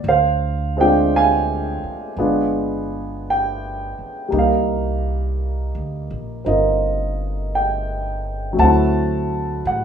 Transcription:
0, 0, Header, 1, 4, 480
1, 0, Start_track
1, 0, Tempo, 1067616
1, 15, Time_signature, 4, 2, 24, 8
1, 4426, End_track
2, 0, Start_track
2, 0, Title_t, "Grand piano"
2, 0, Program_c, 0, 0
2, 0, Control_c, 0, 64, 127
2, 21, Control_c, 0, 64, 0
2, 38, Note_on_c, 0, 77, 72
2, 40, Note_on_c, 0, 72, 49
2, 100, Control_c, 0, 64, 127
2, 338, Note_off_c, 0, 77, 0
2, 345, Note_on_c, 0, 56, 49
2, 350, Note_on_c, 0, 60, 48
2, 359, Note_on_c, 0, 62, 47
2, 363, Note_on_c, 0, 79, 76
2, 365, Note_on_c, 0, 65, 62
2, 508, Note_off_c, 0, 79, 0
2, 523, Note_on_c, 0, 77, 57
2, 523, Note_on_c, 0, 80, 80
2, 969, Note_off_c, 0, 72, 0
2, 975, Note_off_c, 0, 56, 0
2, 977, Note_off_c, 0, 60, 0
2, 980, Note_off_c, 0, 62, 0
2, 980, Note_off_c, 0, 65, 0
2, 981, Control_c, 0, 64, 0
2, 982, Note_on_c, 0, 56, 46
2, 982, Note_on_c, 0, 59, 48
2, 987, Note_on_c, 0, 62, 46
2, 987, Note_on_c, 0, 65, 55
2, 1070, Control_c, 0, 64, 127
2, 1452, Note_off_c, 0, 77, 0
2, 1452, Note_off_c, 0, 80, 0
2, 1485, Note_on_c, 0, 79, 71
2, 1926, Note_on_c, 0, 55, 43
2, 1936, Note_on_c, 0, 58, 39
2, 1944, Note_off_c, 0, 56, 0
2, 1944, Note_off_c, 0, 59, 0
2, 1946, Control_c, 0, 64, 0
2, 1947, Note_off_c, 0, 62, 0
2, 1947, Note_off_c, 0, 65, 0
2, 1948, Note_on_c, 0, 63, 43
2, 1969, Note_off_c, 0, 79, 0
2, 1970, Note_on_c, 0, 70, 42
2, 1972, Note_on_c, 0, 77, 57
2, 2017, Control_c, 0, 64, 127
2, 2749, Note_off_c, 0, 77, 0
2, 2897, Note_off_c, 0, 63, 0
2, 2897, Note_off_c, 0, 70, 0
2, 2898, Note_on_c, 0, 60, 34
2, 2903, Note_on_c, 0, 63, 34
2, 2909, Note_on_c, 0, 65, 41
2, 2910, Note_on_c, 0, 75, 52
2, 2920, Note_on_c, 0, 70, 40
2, 3365, Note_off_c, 0, 75, 0
2, 3395, Note_on_c, 0, 79, 63
2, 3834, Note_on_c, 0, 54, 49
2, 3848, Note_off_c, 0, 79, 0
2, 3849, Note_off_c, 0, 70, 0
2, 3850, Note_off_c, 0, 55, 0
2, 3851, Note_on_c, 0, 57, 43
2, 3855, Note_off_c, 0, 58, 0
2, 3856, Note_off_c, 0, 60, 0
2, 3859, Note_off_c, 0, 63, 0
2, 3862, Note_off_c, 0, 65, 0
2, 3864, Control_c, 0, 64, 0
2, 3864, Note_on_c, 0, 81, 79
2, 3866, Note_on_c, 0, 78, 59
2, 3868, Note_on_c, 0, 60, 43
2, 3883, Note_on_c, 0, 64, 55
2, 3952, Control_c, 0, 64, 127
2, 4320, Note_off_c, 0, 81, 0
2, 4341, Note_off_c, 0, 78, 0
2, 4348, Note_on_c, 0, 78, 64
2, 4426, Note_off_c, 0, 54, 0
2, 4426, Note_off_c, 0, 57, 0
2, 4426, Note_off_c, 0, 60, 0
2, 4426, Note_off_c, 0, 64, 0
2, 4426, Note_off_c, 0, 78, 0
2, 4426, End_track
3, 0, Start_track
3, 0, Title_t, "Upright bass"
3, 0, Program_c, 1, 32
3, 18, Note_on_c, 1, 38, 64
3, 808, Note_off_c, 1, 38, 0
3, 974, Note_on_c, 1, 31, 53
3, 1771, Note_off_c, 1, 31, 0
3, 1943, Note_on_c, 1, 36, 68
3, 2565, Note_off_c, 1, 36, 0
3, 2584, Note_on_c, 1, 38, 51
3, 2731, Note_off_c, 1, 38, 0
3, 2745, Note_on_c, 1, 34, 53
3, 2891, Note_off_c, 1, 34, 0
3, 2905, Note_on_c, 1, 31, 63
3, 3842, Note_off_c, 1, 31, 0
3, 3860, Note_on_c, 1, 38, 67
3, 4319, Note_off_c, 1, 38, 0
3, 4340, Note_on_c, 1, 45, 63
3, 4426, Note_off_c, 1, 45, 0
3, 4426, End_track
4, 0, Start_track
4, 0, Title_t, "Muted upright bass strokes"
4, 826, Note_on_c, 9, 29, 30
4, 871, Note_off_c, 9, 29, 0
4, 1792, Note_on_c, 9, 29, 30
4, 1837, Note_off_c, 9, 29, 0
4, 4426, End_track
0, 0, End_of_file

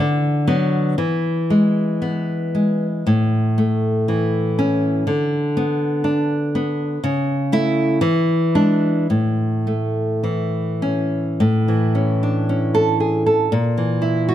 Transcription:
0, 0, Header, 1, 2, 480
1, 0, Start_track
1, 0, Key_signature, 3, "major"
1, 0, Tempo, 986842
1, 479, Time_signature, 2, 2, 24, 8
1, 479, Tempo, 1034483
1, 1919, Tempo, 981997
1, 3839, Tempo, 1083032
1, 4319, Tempo, 1153846
1, 5279, Tempo, 1073345
1, 5759, Tempo, 1032702
1, 6627, End_track
2, 0, Start_track
2, 0, Title_t, "Nylon-string guitar"
2, 0, Program_c, 0, 24
2, 0, Note_on_c, 0, 50, 82
2, 231, Note_on_c, 0, 54, 49
2, 231, Note_on_c, 0, 59, 75
2, 457, Note_off_c, 0, 59, 0
2, 458, Note_off_c, 0, 54, 0
2, 462, Note_off_c, 0, 50, 0
2, 476, Note_on_c, 0, 52, 72
2, 720, Note_on_c, 0, 56, 57
2, 958, Note_on_c, 0, 59, 63
2, 1198, Note_off_c, 0, 56, 0
2, 1204, Note_on_c, 0, 56, 49
2, 1350, Note_off_c, 0, 59, 0
2, 1429, Note_off_c, 0, 52, 0
2, 1444, Note_on_c, 0, 45, 66
2, 1447, Note_off_c, 0, 56, 0
2, 1682, Note_on_c, 0, 57, 56
2, 1916, Note_on_c, 0, 52, 50
2, 2162, Note_on_c, 0, 61, 69
2, 2379, Note_off_c, 0, 45, 0
2, 2396, Note_off_c, 0, 52, 0
2, 2398, Note_on_c, 0, 50, 73
2, 2400, Note_off_c, 0, 57, 0
2, 2402, Note_off_c, 0, 61, 0
2, 2642, Note_on_c, 0, 59, 61
2, 2874, Note_on_c, 0, 62, 72
2, 3117, Note_off_c, 0, 59, 0
2, 3123, Note_on_c, 0, 59, 60
2, 3256, Note_off_c, 0, 62, 0
2, 3332, Note_off_c, 0, 50, 0
2, 3356, Note_off_c, 0, 59, 0
2, 3360, Note_on_c, 0, 49, 79
2, 3598, Note_on_c, 0, 57, 61
2, 3601, Note_on_c, 0, 64, 93
2, 3822, Note_off_c, 0, 57, 0
2, 3823, Note_off_c, 0, 64, 0
2, 3828, Note_off_c, 0, 49, 0
2, 3836, Note_on_c, 0, 52, 81
2, 4076, Note_on_c, 0, 56, 52
2, 4076, Note_on_c, 0, 62, 70
2, 4303, Note_off_c, 0, 56, 0
2, 4303, Note_off_c, 0, 62, 0
2, 4304, Note_off_c, 0, 52, 0
2, 4319, Note_on_c, 0, 45, 64
2, 4556, Note_on_c, 0, 57, 49
2, 4792, Note_on_c, 0, 52, 48
2, 5036, Note_on_c, 0, 61, 58
2, 5263, Note_off_c, 0, 45, 0
2, 5276, Note_off_c, 0, 52, 0
2, 5276, Note_off_c, 0, 61, 0
2, 5277, Note_on_c, 0, 45, 70
2, 5279, Note_off_c, 0, 57, 0
2, 5402, Note_on_c, 0, 52, 47
2, 5521, Note_on_c, 0, 61, 54
2, 5647, Note_on_c, 0, 62, 51
2, 5759, Note_off_c, 0, 61, 0
2, 5765, Note_on_c, 0, 61, 53
2, 5882, Note_on_c, 0, 69, 78
2, 6000, Note_off_c, 0, 69, 0
2, 6002, Note_on_c, 0, 68, 45
2, 6120, Note_off_c, 0, 52, 0
2, 6122, Note_off_c, 0, 68, 0
2, 6123, Note_on_c, 0, 69, 56
2, 6218, Note_off_c, 0, 45, 0
2, 6240, Note_off_c, 0, 69, 0
2, 6241, Note_off_c, 0, 61, 0
2, 6241, Note_off_c, 0, 62, 0
2, 6242, Note_on_c, 0, 46, 68
2, 6361, Note_on_c, 0, 52, 50
2, 6473, Note_on_c, 0, 64, 60
2, 6598, Note_on_c, 0, 66, 60
2, 6627, Note_off_c, 0, 46, 0
2, 6627, Note_off_c, 0, 52, 0
2, 6627, Note_off_c, 0, 64, 0
2, 6627, Note_off_c, 0, 66, 0
2, 6627, End_track
0, 0, End_of_file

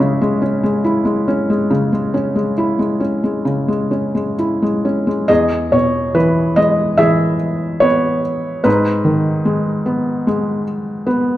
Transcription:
0, 0, Header, 1, 2, 480
1, 0, Start_track
1, 0, Key_signature, 4, "minor"
1, 0, Tempo, 854701
1, 963, Time_signature, 4, 2, 24, 8
1, 1446, Tempo, 879765
1, 1926, Tempo, 923077
1, 2885, Key_signature, 4, "major"
1, 2886, Tempo, 859599
1, 3366, Tempo, 832178
1, 4806, Tempo, 806452
1, 6422, End_track
2, 0, Start_track
2, 0, Title_t, "Felt piano"
2, 0, Program_c, 0, 0
2, 0, Control_c, 0, 64, 127
2, 0, Note_on_c, 0, 49, 58
2, 0, Note_on_c, 0, 56, 43
2, 0, Note_on_c, 0, 61, 43
2, 0, Note_on_c, 0, 64, 50
2, 0, Note_on_c, 0, 68, 60
2, 0, Note_on_c, 0, 73, 57
2, 0, Note_on_c, 0, 75, 78
2, 0, Note_on_c, 0, 76, 71
2, 112, Note_off_c, 0, 56, 0
2, 120, Note_on_c, 0, 56, 49
2, 226, Note_off_c, 0, 61, 0
2, 234, Note_on_c, 0, 61, 44
2, 348, Note_off_c, 0, 56, 0
2, 356, Note_on_c, 0, 56, 44
2, 459, Note_off_c, 0, 64, 0
2, 474, Note_on_c, 0, 64, 43
2, 581, Note_off_c, 0, 56, 0
2, 590, Note_on_c, 0, 56, 45
2, 710, Note_off_c, 0, 61, 0
2, 718, Note_on_c, 0, 61, 47
2, 833, Note_off_c, 0, 56, 0
2, 841, Note_on_c, 0, 56, 45
2, 949, Note_off_c, 0, 49, 0
2, 957, Note_on_c, 0, 49, 54
2, 1073, Note_off_c, 0, 56, 0
2, 1081, Note_on_c, 0, 56, 39
2, 1194, Note_off_c, 0, 61, 0
2, 1202, Note_on_c, 0, 61, 43
2, 1314, Note_off_c, 0, 56, 0
2, 1322, Note_on_c, 0, 56, 39
2, 1417, Note_off_c, 0, 64, 0
2, 1447, Note_on_c, 0, 64, 49
2, 1555, Note_off_c, 0, 56, 0
2, 1563, Note_on_c, 0, 56, 40
2, 1672, Note_off_c, 0, 61, 0
2, 1680, Note_on_c, 0, 61, 40
2, 1799, Note_off_c, 0, 56, 0
2, 1807, Note_on_c, 0, 56, 36
2, 1916, Note_off_c, 0, 49, 0
2, 1924, Note_on_c, 0, 49, 47
2, 2037, Note_off_c, 0, 56, 0
2, 2044, Note_on_c, 0, 56, 43
2, 2155, Note_off_c, 0, 61, 0
2, 2163, Note_on_c, 0, 61, 37
2, 2279, Note_off_c, 0, 56, 0
2, 2286, Note_on_c, 0, 56, 40
2, 2381, Note_off_c, 0, 76, 0
2, 2385, Note_off_c, 0, 73, 0
2, 2387, Note_off_c, 0, 64, 0
2, 2411, Note_on_c, 0, 64, 39
2, 2526, Note_off_c, 0, 56, 0
2, 2534, Note_on_c, 0, 56, 39
2, 2643, Note_off_c, 0, 61, 0
2, 2651, Note_on_c, 0, 61, 39
2, 2758, Note_off_c, 0, 56, 0
2, 2766, Note_on_c, 0, 56, 36
2, 2863, Note_off_c, 0, 49, 0
2, 2873, Note_off_c, 0, 64, 0
2, 2875, Note_off_c, 0, 75, 0
2, 2875, Note_on_c, 0, 75, 82
2, 2878, Note_off_c, 0, 61, 0
2, 2879, Note_off_c, 0, 56, 0
2, 2881, Note_on_c, 0, 40, 49
2, 2882, Note_off_c, 0, 68, 0
2, 2882, Note_on_c, 0, 68, 55
2, 2892, Control_c, 0, 64, 0
2, 2977, Control_c, 0, 64, 127
2, 3121, Note_on_c, 0, 73, 68
2, 3122, Note_on_c, 0, 47, 43
2, 3130, Note_off_c, 0, 75, 0
2, 3358, Note_on_c, 0, 52, 48
2, 3358, Note_on_c, 0, 71, 66
2, 3368, Note_off_c, 0, 73, 0
2, 3597, Note_on_c, 0, 75, 69
2, 3603, Note_on_c, 0, 56, 43
2, 3610, Note_off_c, 0, 71, 0
2, 3821, Note_off_c, 0, 68, 0
2, 3831, Note_off_c, 0, 52, 0
2, 3836, Note_on_c, 0, 76, 80
2, 3840, Note_on_c, 0, 52, 44
2, 3841, Note_on_c, 0, 68, 57
2, 3848, Note_off_c, 0, 75, 0
2, 4058, Note_off_c, 0, 47, 0
2, 4313, Note_on_c, 0, 73, 75
2, 4323, Note_on_c, 0, 59, 45
2, 4334, Note_off_c, 0, 76, 0
2, 4540, Note_off_c, 0, 56, 0
2, 4778, Note_off_c, 0, 52, 0
2, 4778, Note_off_c, 0, 68, 0
2, 4779, Note_off_c, 0, 40, 0
2, 4789, Note_off_c, 0, 59, 0
2, 4795, Note_on_c, 0, 71, 66
2, 4797, Note_on_c, 0, 44, 58
2, 4802, Note_on_c, 0, 63, 51
2, 4812, Control_c, 0, 64, 0
2, 4813, Note_off_c, 0, 73, 0
2, 4907, Control_c, 0, 64, 127
2, 5038, Note_on_c, 0, 51, 47
2, 5280, Note_on_c, 0, 56, 51
2, 5521, Note_on_c, 0, 59, 47
2, 5742, Note_off_c, 0, 71, 0
2, 5746, Note_off_c, 0, 63, 0
2, 5758, Note_off_c, 0, 56, 0
2, 5767, Note_on_c, 0, 56, 49
2, 5982, Note_off_c, 0, 51, 0
2, 6231, Note_off_c, 0, 59, 0
2, 6240, Note_on_c, 0, 59, 54
2, 6422, Note_off_c, 0, 44, 0
2, 6422, Note_off_c, 0, 56, 0
2, 6422, Note_off_c, 0, 59, 0
2, 6422, End_track
0, 0, End_of_file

